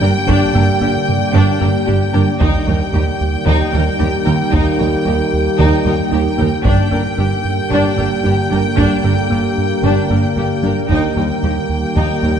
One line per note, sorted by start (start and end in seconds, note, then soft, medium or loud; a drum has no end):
0.00 0.09 G1 soft
0.00 0.09 G2 soft
0.00 2.35 D3 medium
0.00 2.37 D3 medium
0.00 2.35 G3 medium
0.00 0.17 G3 medium
0.00 2.36 A#3 medium
0.00 2.37 A#3 medium
0.00 0.17 D4 medium
0.00 0.10 D4 medium
0.00 2.37 G4 medium
0.00 0.10 A#4 medium
0.00 2.36 D5 medium
0.00 2.36 G5 medium
0.28 0.36 G1 medium
0.28 0.36 G2 medium
0.28 0.45 G2 medium
0.28 0.44 G3 medium
0.28 0.53 D4 medium
0.28 taiko medium
0.54 0.62 G1 medium
0.54 0.63 G2 medium
0.54 0.71 G2 medium
0.54 0.71 A#3 medium
0.54 0.63 D4 soft
0.54 0.63 A#4 soft
0.54 taiko mid soft
0.81 0.90 G1 soft
0.81 0.97 G2 medium
0.81 0.90 G2 medium
0.81 0.97 A#3 medium
0.81 0.90 D4 soft
0.81 0.89 G4 soft
1.08 1.24 G2 medium
1.08 taiko mid soft
1.34 1.43 G1 medium
1.34 1.42 G2 medium
1.34 1.51 G2 medium
1.34 1.50 G3 medium
1.34 1.59 D4 medium
1.60 1.70 G1 medium
1.60 1.69 G2 soft
1.60 1.77 G2 medium
1.60 1.77 A#3 medium
1.60 1.68 D4 soft
1.60 1.69 A#4 medium
1.86 1.96 G1 medium
1.86 1.95 G2 medium
1.86 2.04 G2 medium
1.86 1.95 D4 medium
1.86 1.94 G4 soft
1.86 2.03 G4 medium
2.13 2.22 G1 medium
2.13 2.22 G2 soft
2.13 2.31 G3 medium
2.13 2.22 D4 medium
2.13 2.30 D4 medium
2.13 2.21 A#4 medium
2.40 2.48 D#2 medium
2.40 2.49 D#2 medium
2.40 2.57 D#2 medium
2.40 2.57 D#3 medium
2.40 6.65 D#3 medium
2.40 6.48 D#3 medium
2.40 6.48 G3 medium
2.40 6.61 A#3 medium
2.40 6.48 A#3 medium
2.40 2.65 D#4 medium
2.40 6.61 G4 medium
2.40 6.48 G4 medium
2.40 6.64 A#4 medium
2.40 6.61 G5 medium
2.40 taiko medium
2.67 2.75 D#2 medium
2.67 2.83 D#2 medium
2.67 2.83 G3 medium
2.67 2.75 D#4 soft
2.67 2.76 A#4 soft
2.94 3.02 D#2 soft
2.94 3.10 D#2 medium
2.94 3.10 G3 medium
2.94 3.02 D#4 soft
2.94 3.02 G4 soft
3.21 3.37 D#2 medium
3.46 3.55 D#2 medium
3.46 3.63 D#2 medium
3.46 3.55 D#2 medium
3.46 3.62 D#3 medium
3.46 3.71 D#4 medium
3.73 3.82 D#2 medium
3.73 3.90 D#2 medium
3.73 3.89 G3 medium
3.73 3.81 D#4 medium
3.73 3.81 A#4 medium
3.99 4.08 D#2 medium
3.99 4.16 D#2 soft
3.99 4.07 D#4 soft
3.99 4.15 D#4 medium
3.99 4.07 G4 medium
4.25 4.35 D#2 medium
4.25 4.43 D#3 medium
4.25 4.42 A#3 medium
4.25 4.33 D#4 medium
4.25 4.33 A#4 medium
4.52 4.61 D#2 medium
4.52 4.69 D#2 medium
4.52 4.69 D#3 medium
4.52 4.77 D#4 medium
4.52 4.78 D#4 medium
4.52 taiko medium
4.79 4.88 D#2 medium
4.79 4.96 D#2 medium
4.79 4.95 G3 medium
4.79 4.87 D#4 soft
4.79 4.87 A#4 soft
5.05 5.22 D#2 medium
5.05 5.14 D#2 medium
5.05 5.14 D#2 soft
5.05 5.21 G3 medium
5.05 5.14 D#4 soft
5.05 5.14 G4 soft
5.33 5.49 D#2 medium
5.59 5.75 D#2 medium
5.59 5.67 D#2 medium
5.59 5.75 D#3 medium
5.59 5.84 D#4 medium
5.85 5.94 D#2 soft
5.85 6.02 D#2 medium
5.85 5.94 D#2 medium
5.85 6.01 G3 medium
5.85 5.94 D#4 soft
5.85 5.94 A#4 soft
6.11 6.20 D#2 medium
6.11 6.28 D#2 medium
6.11 6.21 D#2 soft
6.11 6.27 D#4 medium
6.11 6.20 D#4 medium
6.11 6.21 G4 medium
6.38 6.47 D#2 soft
6.38 6.47 D#2 medium
6.38 6.55 D#3 medium
6.38 6.54 A#3 medium
6.38 6.46 D#4 soft
6.38 6.47 A#4 medium
6.64 6.73 G1 medium
6.64 6.73 G2 medium
6.64 6.81 G2 medium
6.64 10.90 D3 medium
6.64 10.86 D3 medium
6.64 10.86 G3 medium
6.64 6.81 G3 medium
6.64 12.40 A#3 medium
6.64 10.86 A#3 medium
6.64 6.89 D4 medium
6.64 6.90 D4 medium
6.64 10.86 G4 medium
6.64 12.40 G4 medium
6.64 12.40 A#4 medium
6.64 10.86 G5 medium
6.64 taiko medium
6.91 7.00 G1 soft
6.91 7.00 G2 medium
6.91 7.08 G2 medium
6.91 7.07 A#3 medium
6.91 6.99 D4 soft
6.91 7.00 A#4 soft
7.18 7.26 G1 soft
7.18 7.26 G2 soft
7.18 7.34 G2 medium
7.18 7.34 A#3 medium
7.18 7.26 D4 soft
7.18 7.26 G4 soft
7.45 7.61 G2 medium
7.71 7.79 G1 medium
7.71 7.79 G2 medium
7.71 7.88 G2 medium
7.71 7.87 G3 medium
7.71 7.96 D4 medium
7.98 8.06 G1 soft
7.98 8.06 G2 soft
7.98 8.14 G2 medium
7.98 8.14 A#3 medium
7.98 8.06 D4 soft
7.98 8.06 A#4 soft
8.24 8.32 G1 soft
8.24 8.32 G2 soft
8.24 8.41 G2 soft
8.24 8.32 D4 soft
8.24 8.40 G4 medium
8.24 8.34 G4 soft
8.51 8.59 G1 soft
8.51 8.59 G2 soft
8.51 8.67 G3 medium
8.51 8.59 D4 soft
8.51 8.67 D4 soft
8.51 8.60 A#4 medium
8.77 8.86 G1 medium
8.77 8.86 G2 medium
8.77 8.94 G2 medium
8.77 8.93 G3 medium
8.77 9.02 D4 medium
8.77 taiko medium
9.04 9.13 G1 soft
9.04 9.12 G2 soft
9.04 9.20 G2 medium
9.04 9.20 A#3 medium
9.04 9.12 D4 soft
9.04 9.13 A#4 soft
9.30 9.39 G1 soft
9.30 9.39 G2 soft
9.30 9.47 G2 medium
9.30 9.46 A#3 medium
9.30 9.39 D4 soft
9.30 9.38 G4 soft
9.58 9.74 G2 medium
9.83 9.92 G1 medium
9.83 9.99 G2 medium
9.83 9.92 G2 medium
9.83 9.99 G3 medium
9.83 10.08 D4 medium
10.10 10.18 G1 soft
10.10 10.18 G2 soft
10.10 10.26 G2 medium
10.10 10.26 A#3 soft
10.10 10.18 D4 soft
10.10 10.18 A#4 soft
10.37 10.45 G1 soft
10.37 10.53 G2 soft
10.37 10.45 G2 soft
10.37 10.45 D4 soft
10.37 10.53 G4 medium
10.37 10.46 G4 soft
10.63 10.71 G1 soft
10.63 10.72 G2 soft
10.63 10.79 G3 soft
10.63 10.79 D4 soft
10.63 10.72 D4 soft
10.63 10.73 A#4 soft
10.89 11.06 D#2 medium
10.89 10.98 D#2 medium
10.89 10.99 D#2 medium
10.89 12.40 D#3 medium
10.89 11.06 D#3 medium
10.89 12.40 G3 medium
10.89 12.40 A#3 medium
10.89 11.15 D#4 medium
10.89 12.40 G4 medium
10.89 12.40 G5 medium
10.89 taiko soft
11.16 11.32 D#2 medium
11.16 11.25 D#2 soft
11.16 11.33 G3 medium
11.16 11.25 D#4 soft
11.16 11.24 A#4 soft
11.43 11.59 D#2 medium
11.43 11.51 D#2 soft
11.43 11.60 G3 soft
11.43 11.52 D#4 soft
11.43 11.51 G4 soft
11.69 11.85 D#2 soft
11.96 12.12 D#2 medium
11.96 12.04 D#2 medium
11.96 12.05 D#2 medium
11.96 12.12 D#3 medium
11.96 12.20 D#4 soft
11.96 12.21 D#4 medium
12.21 12.38 D#2 medium
12.21 12.31 D#2 soft
12.21 12.39 G3 soft
12.21 12.31 D#4 soft
12.21 12.29 A#4 soft